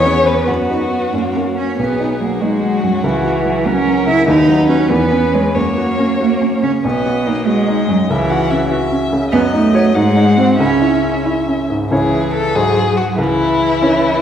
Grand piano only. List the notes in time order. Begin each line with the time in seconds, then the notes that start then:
Already playing: E2
0.05 B3 C#4 G#4
0.49 F#2
0.70 B3 D#4 F#4
1.13 F#2
1.36 A#3 C#4 F#4
1.79 B1
2.00 D#4
2.21 F#3
2.42 D#4
2.62 F#3
2.84 F#2
3.04 C#2
3.24 F#4
3.45 F#3
3.67 F#4
3.87 F#3
4.07 C#3
4.28 D#2
4.48 F#3
4.69 F#4 B4
4.90 E2
5.12 C#4
5.33 G#4 C#5
5.55 F#2
5.78 F#4
5.99 C#4
6.20 F#4
6.41 C#4
6.63 C#3
6.85 B1
7.06 F#4
7.26 D#4
7.47 F#4
7.68 D#4
7.89 F#2
8.10 C#2
8.31 F#4
8.51 C#4
8.71 F#4
8.92 C#4
9.13 C#3
9.33 F#2
9.54 D#4
9.74 F#4 C#5
9.96 G#2
10.17 D#4
10.38 F#4 C5
10.60 C#2
10.82 E4
11.03 C#4
11.26 E4
11.48 C#4
11.70 G#2
11.91 C#2 C#4 E4 C#5
12.55 G#2 D#4 F#4 C5
13.18 C#2
13.82 C#4 E4 C#5